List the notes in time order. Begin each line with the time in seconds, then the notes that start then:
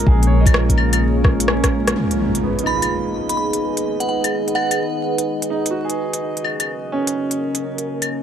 Already playing: G#3 A#3 C#4 D#4 F4 A#4
0.06 A#1 G#4, kick
0.23 C#5, closed hi-hat
0.40 D#5
0.46 kick, closed hi-hat, claves
0.54 cross-stick
0.69 kick, closed hi-hat
0.78 claves
0.93 closed hi-hat, claves
1.24 kick, cross-stick
1.40 closed hi-hat
1.48 C#4, cross-stick
1.63 kick, cross-stick, closed hi-hat
1.87 cross-stick, closed hi-hat
1.96 D#4 G#4 B4 D#5, impact
2.11 closed hi-hat
2.35 closed hi-hat
2.43 B3
2.59 closed hi-hat
2.63 D#4 B5, claves
2.76 F4
2.82 closed hi-hat, claves
3.29 B5, closed hi-hat
3.37 B5
3.53 closed hi-hat
3.77 closed hi-hat
4.00 F#5, closed hi-hat
4.09 F#5
4.24 closed hi-hat, claves
4.48 closed hi-hat
4.55 F#5, claves
4.71 closed hi-hat, claves
5.18 closed hi-hat
5.42 closed hi-hat
5.50 D#4
5.66 closed hi-hat
5.71 C#4 F#4
5.75 A#4
5.84 G#4
5.90 closed hi-hat
6.13 closed hi-hat
6.37 closed hi-hat
6.44 claves
6.60 closed hi-hat, claves
6.92 C#4
7.07 closed hi-hat
7.31 closed hi-hat
7.55 closed hi-hat
7.63 F4
7.78 closed hi-hat
8.02 closed hi-hat, claves